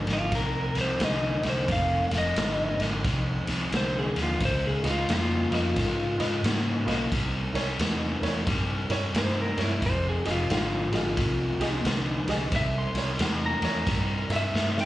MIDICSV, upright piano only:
0, 0, Header, 1, 2, 480
1, 0, Start_track
1, 0, Key_signature, -4, "minor"
1, 0, Tempo, 677201
1, 1194, Time_signature, 4, 2, 24, 8
1, 10527, End_track
2, 0, Start_track
2, 0, Title_t, "Upright piano"
2, 0, Program_c, 0, 0
2, 3420, Note_on_c, 0, 65, 66
2, 3428, Note_on_c, 0, 71, 63
2, 3437, Note_on_c, 0, 75, 77
2, 3511, Note_off_c, 0, 65, 0
2, 3515, Note_off_c, 0, 71, 0
2, 3519, Note_off_c, 0, 75, 0
2, 3906, Note_on_c, 0, 65, 69
2, 3914, Note_on_c, 0, 71, 59
2, 3921, Note_on_c, 0, 75, 81
2, 3995, Note_off_c, 0, 65, 0
2, 3998, Note_off_c, 0, 71, 0
2, 4002, Note_off_c, 0, 75, 0
2, 4381, Note_on_c, 0, 65, 79
2, 4388, Note_on_c, 0, 71, 78
2, 4395, Note_on_c, 0, 75, 93
2, 4472, Note_off_c, 0, 65, 0
2, 4476, Note_off_c, 0, 71, 0
2, 4479, Note_off_c, 0, 75, 0
2, 4860, Note_on_c, 0, 65, 85
2, 4867, Note_on_c, 0, 71, 73
2, 4872, Note_on_c, 0, 75, 86
2, 4952, Note_off_c, 0, 65, 0
2, 4955, Note_off_c, 0, 71, 0
2, 4958, Note_off_c, 0, 75, 0
2, 5337, Note_on_c, 0, 64, 81
2, 5347, Note_on_c, 0, 70, 77
2, 5353, Note_on_c, 0, 73, 93
2, 5431, Note_off_c, 0, 64, 0
2, 5436, Note_off_c, 0, 70, 0
2, 5439, Note_off_c, 0, 73, 0
2, 5822, Note_on_c, 0, 64, 78
2, 5828, Note_on_c, 0, 70, 78
2, 5834, Note_on_c, 0, 73, 90
2, 5913, Note_off_c, 0, 64, 0
2, 5916, Note_off_c, 0, 70, 0
2, 5919, Note_off_c, 0, 73, 0
2, 6303, Note_on_c, 0, 64, 80
2, 6307, Note_on_c, 0, 70, 83
2, 6318, Note_on_c, 0, 73, 98
2, 6393, Note_off_c, 0, 64, 0
2, 6395, Note_off_c, 0, 70, 0
2, 6400, Note_off_c, 0, 73, 0
2, 6785, Note_on_c, 0, 64, 70
2, 6791, Note_on_c, 0, 70, 65
2, 6797, Note_on_c, 0, 73, 77
2, 6873, Note_off_c, 0, 64, 0
2, 6876, Note_off_c, 0, 70, 0
2, 6879, Note_off_c, 0, 73, 0
2, 7262, Note_on_c, 0, 67, 73
2, 7270, Note_on_c, 0, 68, 67
2, 7276, Note_on_c, 0, 75, 84
2, 7351, Note_off_c, 0, 67, 0
2, 7355, Note_off_c, 0, 68, 0
2, 7358, Note_off_c, 0, 75, 0
2, 7743, Note_on_c, 0, 67, 68
2, 7751, Note_on_c, 0, 68, 72
2, 7758, Note_on_c, 0, 75, 76
2, 7831, Note_off_c, 0, 67, 0
2, 7834, Note_off_c, 0, 68, 0
2, 7838, Note_off_c, 0, 75, 0
2, 8222, Note_on_c, 0, 67, 91
2, 8227, Note_on_c, 0, 68, 76
2, 8234, Note_on_c, 0, 75, 94
2, 8309, Note_off_c, 0, 67, 0
2, 8312, Note_off_c, 0, 68, 0
2, 8315, Note_off_c, 0, 75, 0
2, 8704, Note_on_c, 0, 67, 79
2, 8710, Note_on_c, 0, 68, 79
2, 8716, Note_on_c, 0, 75, 97
2, 8789, Note_off_c, 0, 67, 0
2, 8792, Note_off_c, 0, 68, 0
2, 8795, Note_off_c, 0, 75, 0
2, 9182, Note_on_c, 0, 64, 77
2, 9189, Note_on_c, 0, 70, 70
2, 9196, Note_on_c, 0, 73, 86
2, 9267, Note_off_c, 0, 64, 0
2, 9270, Note_off_c, 0, 70, 0
2, 9274, Note_off_c, 0, 73, 0
2, 9660, Note_on_c, 0, 64, 72
2, 9665, Note_on_c, 0, 70, 68
2, 9672, Note_on_c, 0, 73, 82
2, 9744, Note_off_c, 0, 64, 0
2, 9747, Note_off_c, 0, 70, 0
2, 9750, Note_off_c, 0, 73, 0
2, 10133, Note_on_c, 0, 64, 74
2, 10138, Note_on_c, 0, 70, 66
2, 10145, Note_on_c, 0, 76, 81
2, 10220, Note_off_c, 0, 64, 0
2, 10222, Note_off_c, 0, 70, 0
2, 10226, Note_off_c, 0, 76, 0
2, 10527, End_track
0, 0, End_of_file